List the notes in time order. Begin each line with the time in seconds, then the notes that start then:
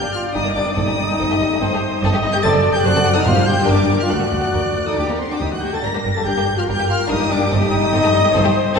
Already playing: D5 G5 G6
0.02 G2 A#3 D4
0.13 F4 F5 F6
0.18 F4
0.33 G1 G2 D4 D#4 G4 D#5 D#6
0.38 D#4
0.44 G2 A#3 D4
0.54 G1 G2 G3 A#3 D4 D5 D6
0.59 D4
0.65 G2 A#3 D4
0.74 G1 G2 C4 D#4 A4 D#5 D#6
0.78 D#4
0.86 G2 A3 G4
0.96 G1 G2 G3 D#4
1.07 G2 A3 G4
1.18 G1 G2 C4 A4 D#5
1.28 G2 A3 G4
1.39 G1 G2 G3 D#4
1.49 G2 A3 G4
1.60 G1 G2 C4 A4 C5
1.71 G2 A3 G4
2.01 G1 G2 C4 A4 D#5
2.12 G2 A3 G4
2.22 G1 G2 G3 D#4
2.32 G2 A3 G4 G5 G6
2.42 F#1 F#2 D4 A4 C5 D5 A5 A6
2.53 F#2 C4 A4
2.63 F#1 F#2 A3 F#4
2.73 F#2 C4 G4 A4 G5 G6
2.83 F#1 F#2 D4 F#4 C5 D5 F#5 F#6
2.94 F#2 C4 A4
3.04 F#1 F#2 A3 F#4
3.13 F#2 C4 D#4 A4 D#5 D#6
3.24 G1 G2 D4 F4 A#4 C5 F5 F6
3.34 G2 A#3 G4
3.46 G4 G5 G6
3.65 G1 G2 D4 A#4 D6
3.69 D4 D5
3.75 A#3 G4
3.79 G2
3.86 G1 G2 G3 D4
3.97 G2 A#3 G4 F6
4.02 F4 F5
4.08 D2 D4 F#4 A4 D5 F#6
4.14 F#5
4.19 D2 A3 F#4
4.31 D2 A3 D4
4.41 D2 A3 F#4
4.53 D2 A#4
4.65 D2
4.76 D2
4.85 D2 D#4 A4 D#5 D#6
4.95 D2 D4 G4 D5 D6
5.08 D2 A#3 A#4 A#5
5.19 C4 C5 C6
5.30 D4 F#4 D5 D6
5.40 D2 D#4 G4 D#5 D#6
5.51 D2 F#4 F#5 F#6
5.61 D2 F#4 G4 G5 G6
5.72 D2 A4 A5 A6
5.82 G1 G2 D4 A#4 A#5 A#6
5.93 G2 A#3 G4
6.04 G1 G2 G3 D4
6.15 G2 A#3 G4 A4 A5 A6
6.24 G1 G2 D4 G4 A#4 G5 G6
6.36 G2 A#3 G4
6.45 G1 G2 G3 D4
6.57 G2 A#3 F4 G4 F5 F6
6.68 G1 G2 D4 G4 A#4 G5 G6
6.78 G2 A#3 G4
6.88 F4 F5 F6
7.07 D4 D#4 A#4 D#5
7.11 G1 G2 D#4 G4 D#6
7.19 G2 A#3 G4
7.29 G1 G2 G3 D4 D5 D6
7.39 G2 A#3 G4
7.50 G1 G2 C4 D#4 A4 D#5 D#6
7.61 G2 A3 G4
7.70 G1 G3 D#4
7.74 G2
7.81 G2 A3 G4
7.92 G1 G2 C4 A4 D#5
8.03 G2 A3 G4
8.12 G1 G2 G3 D#4
8.24 G2 A3 G4
8.34 G1 G2 C4 A4 C5
8.44 G2 A3 G4
8.75 C4 A4